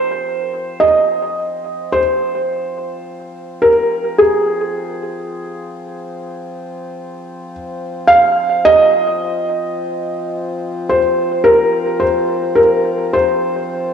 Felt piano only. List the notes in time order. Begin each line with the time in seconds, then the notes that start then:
Already playing: C5
0.80 D#5
1.92 C5
3.62 A#4
4.18 G#4
8.07 F5
8.65 D#5
10.90 C5
11.44 A#4
12.00 C5
12.55 A#4
13.13 C5